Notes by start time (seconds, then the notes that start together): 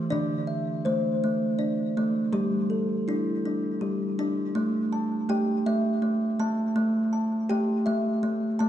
Already playing: A3
0.10 D3 D4 D5
0.47 E5
0.85 A3 C5
1.24 A3
1.59 D4 D5
1.97 A3
2.33 G3 G4
2.70 A4
3.08 D4 E4
3.46 D4
3.81 G3 G4
4.19 D4
4.55 A3
4.93 A5
5.29 A3 G4 G5
5.66 A3 E5
6.02 A3
6.40 A3 A5
6.76 A3
7.13 A5
7.49 A3 G4 G5
7.86 A3 E5
8.23 A3
8.59 A3 A5